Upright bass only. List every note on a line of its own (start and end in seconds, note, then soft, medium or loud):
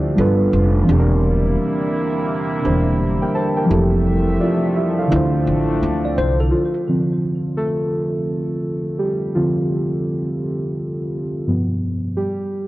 0.00 0.15 D2 medium
0.18 0.51 G1 loud
0.53 0.86 F1 medium
0.89 1.55 E1 loud
2.65 3.19 E1 medium
3.71 4.37 F1 loud
5.12 5.45 D2 loud
5.47 5.80 A1 medium
5.82 6.15 D2 medium
6.18 6.51 C2 medium